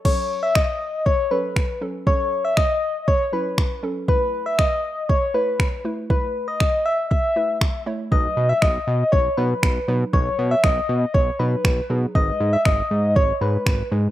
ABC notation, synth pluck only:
X:1
M:4/4
L:1/16
Q:1/4=119
K:F#dor
V:1 name="Synth pluck"
[F,CA]4 z6 [F,CA]2 z2 [F,CA] z | [F,CA]4 z6 [F,CE]2 z2 [F,CA] z | [A,EB]4 z6 [A,EB]2 z2 [A,EB] z | [A,EB]4 z6 [A,EB]2 z2 [A,Ec] z |
[F,DB]4 z6 [F,DB]2 z2 [F,DB] z | [F,DB]4 z6 [F,DB]2 z2 [F,DG] z | [G,DB]4 z6 [G,DB]2 z2 [G,DB] z |]